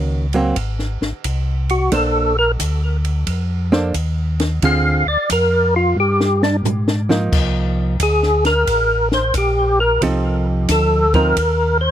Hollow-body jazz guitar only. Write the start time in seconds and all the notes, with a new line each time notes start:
Already playing: D#3 A#3 C#4 F#4
0.34 F#3 A#3 C4
1.92 A#3 D4 A4 C5
3.72 A#3 D4 A4 C5
4.63 D3 C4 F4 G#4
7.09 F3 A#3 D#4
10.02 F3 C4 D#4 A4
11.15 F3 C4 D#4